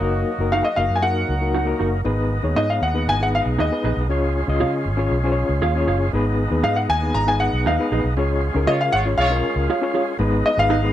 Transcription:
Already playing: tonewheel organ F#3 A#3 D#4, horn section A#3 F#4 D#5
0.01 fingered electric bass F#1, reed electric piano A#3 D#4 F#4 A#4
0.38 fingered electric bass F#1, reed electric piano A#3 D#4 F#4 A#4
0.52 clean electric guitar D#4 F#4 A#4 F#5, grand piano F5
0.63 grand piano D#5 F5
0.76 fingered electric bass F#1, reed electric piano A#3 D#4 F#4 A#4, grand piano F5
0.90 fingered electric bass F#2
0.96 grand piano G#5
1.02 reed electric piano A#3 D#4 F#4 A#4, grand piano F#5
1.29 fingered electric bass C#2
1.41 reed electric piano A#3 D#4 F#4 A#4
1.54 clean electric guitar D#4 F#4 A#4 F#5
1.65 reed electric piano A#3 D#4 F#4 A#4
1.79 fingered electric bass F#1, clean electric guitar D#4 F#4 A#4 F#5
2.04 fingered electric bass G#1, tonewheel organ G#3 B3 D#4, reed electric piano B3 D#4 G#4 B4
2.43 fingered electric bass D#2, reed electric piano A#3 D#4 G#4 C#5
2.49 reed electric piano B3
2.56 fingered electric bass G#2, clean electric guitar D#4 G#4 B4 D#5, grand piano D#5
2.70 grand piano F5
2.81 fingered electric bass D#2, grand piano F#5
2.94 reed electric piano B3 D#4 G#4 B4
3.07 fingered electric bass G#1, grand piano G#5
3.20 reed electric piano B3 D#4 G#4 B4, grand piano F#5
3.35 grand piano F5
3.46 fingered electric bass B1
3.58 fingered electric bass D#2, clean electric guitar D#4 G#4 B4 D#5, grand piano D#5
3.71 reed electric piano B3 D#4 G#4 B4
3.84 fingered electric bass A#1, clean electric guitar D#4 G#4 B4 D#5
3.97 fingered electric bass B1
4.09 fingered electric bass C#2, reed electric piano C#4 F4 G#4 C#5, tonewheel organ C#4 F4
4.47 fingered electric bass C#2, reed electric piano C#4 F4 G#4 D#5
4.60 fingered electric bass C#3, clean electric guitar F4 G#4 C#5 F5
4.85 fingered electric bass G#1
4.97 reed electric piano C#4 F4 G#4 C#5
5.11 fingered electric bass B1
5.24 reed electric piano C#4 F4 G#4 C5
5.32 reed electric piano C#5
5.49 fingered electric bass C#2
5.62 fingered electric bass D#2, clean electric guitar F4 G#4 C#5 F5
5.76 reed electric piano C#4 F4 G#4 C#5
5.87 fingered electric bass F#1, clean electric guitar F4 G#4 C#5 F5
6.13 fingered electric bass G#1, tonewheel organ B3 D#4, reed electric piano B3 D#4 G#4 B4
6.50 fingered electric bass D#2, reed electric piano B3 D#4 G#4 B4
6.63 fingered electric bass G#2, clean electric guitar D#4 G#4 B4 D#5, grand piano F5
6.76 grand piano F#5
6.89 fingered electric bass D#2, grand piano G#5
7.02 reed electric piano B3 D#4 G#4 B4
7.14 fingered electric bass G#1, grand piano A#5
7.27 reed electric piano B3 D#4 G#4 B4, grand piano G#5
7.40 grand piano F#5
7.53 fingered electric bass B1
7.66 fingered electric bass D#2, clean electric guitar D#4 G#4 B4 D#5, grand piano F5
7.78 reed electric piano B3 D#4 G#4 B4
7.92 fingered electric bass A#1, clean electric guitar D#4 G#4 B4 D#5
8.04 fingered electric bass B1
8.17 fingered electric bass C#2, tonewheel organ C#4 F4, reed electric piano C#4 F4 G#4 C#5
8.54 fingered electric bass C#2, reed electric piano C#4 D#4 G#4 A#4
8.61 reed electric piano F4
8.67 fingered electric bass C#3, horn section G#3 F4 C#5, clean electric guitar F4 G#4 C#5 F5, grand piano D#5
8.81 grand piano F5
8.92 fingered electric bass G#1, horn section G#3 F4 C#5, grand piano F#5
9.05 reed electric piano C#4 F4 G#4 C#5
9.18 fingered electric bass B1, horn section G#3 F4 C#5, grand piano F5
9.30 reed electric piano C#4 F4 G#4 A#4
9.56 fingered electric bass C#2
9.70 clean electric guitar F4 G#4 C#5 F5
9.81 reed electric piano C#4 F4 G#4 C#5
9.94 clean electric guitar F4 G#4 C#5 F5
10.19 fingered electric bass G#1, reed electric piano G#3 B3 D#4 G#4 B4, tonewheel organ G#3 B3 D#4
10.46 grand piano D#5
10.57 fingered electric bass G#1, reed electric piano G#3 B3 D#4 G#4 B4, grand piano F5
10.70 clean electric guitar D#4 G#4 B4 D#5
10.83 reed electric piano G#3 B3 D#4 G#4 B4

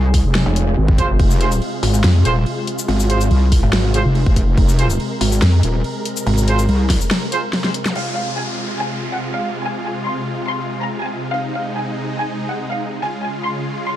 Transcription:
Already playing: wobble bass C2, supersaw synth C3 G#3 G#4
0.14 kick, open hi-hat
0.25 wobble bass F1
0.35 snare
0.46 wobble bass F1
0.56 closed hi-hat
0.77 wobble bass G#1
0.88 kick
0.98 brass ensemble F4 G#4 C5, kick, closed hi-hat
1.19 wobble bass F1, supersaw synth F4, kick, crash
1.31 shaker
1.41 brass ensemble F4 G#4 C5, closed hi-hat
1.52 closed hi-hat, shaker
1.62 crash
1.83 wobble bass G#1, open hi-hat
1.94 shaker
2.04 wobble bass F2, snare, crash
2.25 wobble bass D#1, brass ensemble F4 G#4 C5, closed hi-hat
2.46 crash
2.67 closed hi-hat
2.79 shaker
2.88 wobble bass G#1, crash
3.00 shaker
3.10 brass ensemble F4 G#4 C5, closed hi-hat
3.21 closed hi-hat, shaker
3.31 wobble bass C2, crash
3.52 kick, open hi-hat
3.63 wobble bass G#1
3.73 snare, crash
3.94 brass ensemble F4 G#4 C5, closed hi-hat
4.05 wobble bass F1
4.15 crash
4.26 wobble bass F1, kick
4.36 kick, closed hi-hat
4.57 wobble bass F1, supersaw synth A#4, kick, crash
4.69 shaker
4.79 brass ensemble F4 G#4 C5, closed hi-hat
4.90 closed hi-hat, shaker
5.00 crash
5.21 wobble bass G#1, open hi-hat
5.32 shaker
5.42 wobble bass F2, snare, crash
5.63 wobble bass D#1, closed hi-hat
5.84 crash
6.05 closed hi-hat
6.17 shaker
6.27 wobble bass G#1, crash
6.38 shaker
6.48 brass ensemble F4 G#4 C5, closed hi-hat
6.59 closed hi-hat, shaker
6.69 wobble bass C2, crash
6.90 kick, snare, open hi-hat
7.01 shaker
7.11 snare, crash
7.32 brass ensemble F4 G#4 C5, closed hi-hat
7.53 snare, crash
7.64 snare
7.74 closed hi-hat
7.85 snare, zap
7.95 supersaw synth C3 G#3 F4, violin section F5, crash, downlifter
8.17 violin section F5
8.38 violin section G#5
8.80 violin section G#5
9.12 violin section F#5
9.33 violin section F5
9.65 violin section G#5
9.86 violin section G#5
10.07 violin section C6
10.49 violin section C6
10.81 violin section A#5
11.02 violin section G#5
11.34 supersaw synth G#3 D#4, violin section F5
11.55 violin section F5
11.76 violin section G#5
12.18 violin section G#5
12.50 violin section F#5
12.71 violin section F5
13.02 supersaw synth C#3 G#3 F4, violin section G#5
13.24 violin section G#5
13.45 violin section C6
13.87 violin section C6

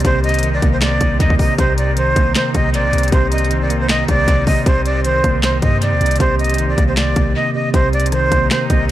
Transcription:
Already playing: tine electric piano C3 D#3 A#3, flute section C4 D#4 G4 A#4
0.00 closed hi-hat
0.05 808-style bass C2, tine electric piano C3, flute C5, kick, closed hi-hat
0.24 flute D#5, closed hi-hat
0.29 closed hi-hat
0.34 closed hi-hat
0.39 closed hi-hat
0.43 tine electric piano D#3, closed hi-hat
0.53 flute D5
0.62 808-style bass C2, tine electric piano A#3, kick, closed hi-hat
0.73 flute C5
0.81 flute D5, snare, clap, closed hi-hat
1.01 808-style bass C2, tine electric piano C3, kick, closed hi-hat
1.20 808-style bass D#2, flute D#5, kick, closed hi-hat
1.30 kick
1.39 tine electric piano C3, flute D#5, kick, open hi-hat
1.58 808-style bass C2, tine electric piano C3, flute section C4, flute C5, kick, closed hi-hat
1.78 flute D5, closed hi-hat
1.97 tine electric piano D#3, flute C5, closed hi-hat
2.16 808-style bass C2, tine electric piano A#3, kick, closed hi-hat
2.35 flute C5, snare, clap, closed hi-hat
2.54 808-style bass C2, tine electric piano C3, flute D#5, kick, closed hi-hat
2.74 808-style bass A#1, flute D5, closed hi-hat
2.84 808-style bass C2
2.93 808-style bass C2, tine electric piano C3, closed hi-hat
2.98 closed hi-hat
3.03 closed hi-hat
3.08 closed hi-hat
3.12 808-style bass C2, tine electric piano C3, flute C5, kick, closed hi-hat
3.32 flute D#5, closed hi-hat
3.38 closed hi-hat
3.44 closed hi-hat
3.51 tine electric piano D#3, closed hi-hat
3.61 flute D5
3.70 tine electric piano A#3, closed hi-hat
3.80 flute C5
3.89 flute D#5, snare, clap, closed hi-hat
4.08 808-style bass C2, tine electric piano C3, flute D5, kick, closed hi-hat
4.28 808-style bass C2, kick, closed hi-hat
4.47 tine electric piano C3, 808-style bass C3, flute D#5, kick, open hi-hat
4.66 808-style bass C2, tine electric piano C3, flute section G4, flute C5, kick, closed hi-hat
4.85 flute D5, closed hi-hat
5.04 tine electric piano D#3, flute C5, closed hi-hat
5.24 808-style bass C2, tine electric piano A#3, kick, closed hi-hat
5.43 flute C5, snare, clap, closed hi-hat
5.62 808-style bass G2, tine electric piano C3, flute D#5, kick, closed hi-hat
5.82 flute D5, closed hi-hat
5.92 808-style bass D#2
6.01 808-style bass C2, tine electric piano C3, closed hi-hat
6.06 closed hi-hat
6.11 closed hi-hat
6.16 closed hi-hat
6.20 808-style bass C2, tine electric piano C3, flute C5, kick, closed hi-hat
6.39 flute D#5, closed hi-hat
6.44 closed hi-hat
6.49 closed hi-hat
6.54 closed hi-hat
6.58 tine electric piano D#3, closed hi-hat
6.69 flute D5
6.78 808-style bass C2, tine electric piano A#3, kick, closed hi-hat
6.88 flute C5
6.97 flute D5, snare, clap, closed hi-hat
7.16 808-style bass C2, tine electric piano C3, kick, closed hi-hat
7.35 flute D#5
7.55 tine electric piano C3, flute D#5
7.74 808-style bass C2, tine electric piano C3, flute section C4 D#4 G4 A#4, flute C5, kick, closed hi-hat
7.93 flute D5, closed hi-hat
8.00 closed hi-hat
8.06 closed hi-hat
8.12 tine electric piano D#3, flute C5, cross-stick, closed hi-hat
8.31 808-style bass C2, tine electric piano A#3, kick, closed hi-hat
8.51 flute C5, snare, clap, closed hi-hat
8.70 808-style bass C2, tine electric piano C3, flute D#5, kick, closed hi-hat

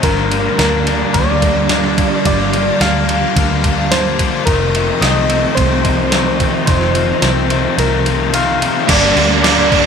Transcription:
Already playing: string machine A#5
0.02 picked electric bass G1, overdriven electric guitar G2 D3 G3 A#3 D4, clean electric guitar F3, string machine G4 F5, soft synth lead A#4, kick, ride
0.17 snare
0.31 clean electric guitar F3, ride
0.57 picked electric bass D2, overdriven electric guitar D3 G3 A#3 D4, clean electric guitar D4, soft synth lead A#4, snare, ride
0.86 clean electric guitar F3, overdriven electric guitar G3 A#3 D4, ride
1.13 picked electric bass D2, overdriven electric guitar G2 D3 G3 A#3 D4, clean electric guitar A#3, soft synth lead D5, kick, ride
1.42 clean electric guitar F3, kick, ride
1.69 overdriven electric guitar D3 G3 A#3 D4, clean electric guitar F3, snare, ride
1.84 snare
1.98 clean electric guitar F3, kick, ride
2.25 picked electric bass G1, overdriven electric guitar G2 D3 G3 A#3 D4, clean electric guitar F3, soft synth lead D5, kick, ride
2.40 snare
2.53 clean electric guitar F3, ride
2.80 picked electric bass D2, overdriven electric guitar D3 G3 A#3 D4, clean electric guitar D4, soft synth lead F5, snare, ride
3.08 clean electric guitar F3, overdriven electric guitar G3 A#3 D4, ride
3.36 picked electric bass D2, overdriven electric guitar G2 D3 G3 A#3 D4, clean electric guitar A#3, kick, ride
3.64 clean electric guitar F3, kick, ride
3.91 overdriven electric guitar D3 G3 A#3 D4, clean electric guitar F3, soft synth lead C5, snare, ride
4.19 clean electric guitar F3, kick, ride
4.46 picked electric bass F1, overdriven electric guitar F2 C3 D#3 A3 C4 D#4, clean electric guitar D#3, string machine F4 D#5, soft synth lead A#4, kick, ride
4.74 clean electric guitar D#3, ride
5.01 picked electric bass C2, overdriven electric guitar C3 D#3 A3 C4, clean electric guitar C4, soft synth lead D#5, snare, ride
5.29 clean electric guitar D#3, overdriven electric guitar D#3 A3 C4, ride
5.55 picked electric bass C2, overdriven electric guitar F2 C3 D#3 A3, soft synth lead C5, kick, ride
5.59 overdriven electric guitar C4
5.85 clean electric guitar D#3, kick, ride
6.12 overdriven electric guitar C3 D#3 A3 C4, clean electric guitar D#3, snare, ride
6.40 clean electric guitar D#3, kick, ride
6.66 picked electric bass F1, overdriven electric guitar F2 C3 D#3 A3 C4, clean electric guitar D#3, soft synth lead C5, string machine F5, kick, ride
6.81 snare
6.95 clean electric guitar D#3, ride
7.22 picked electric bass C2, overdriven electric guitar C3 D#3 A3 C4, clean electric guitar C4, snare, ride
7.50 clean electric guitar D#3, overdriven electric guitar D#3 A3 C4, ride
7.76 picked electric bass C2, overdriven electric guitar F2 C3 D#3 A3 C4, soft synth lead A#4, ride
8.06 clean electric guitar D#3, ride
8.32 overdriven electric guitar C3 D#3 A3 C4, clean electric guitar D#3, soft synth lead F5, ride
8.61 clean electric guitar D#3, ride
8.88 picked electric bass G1, overdriven electric guitar G2 D3 G3 A#3 D4, clean electric guitar A#3, string machine G4 D5 A#5, soft synth lead D5, kick, crash
9.15 picked electric bass D2, overdriven electric guitar D3 G3 A#3 D4, clean electric guitar D4, crash
9.30 overdriven electric guitar G3 A#3 D4
9.43 overdriven electric guitar G2 D3 G3 A#3 D4, clean electric guitar A#3, soft synth lead D5, snare, crash
9.58 overdriven electric guitar G3 A#3 D4
9.70 distorted electric guitar G2 D4, overdriven electric guitar D3 G3 A#3, clean electric guitar A#3, muted overdriven electric guitar stroke, kick, crash
9.75 overdriven electric guitar D4

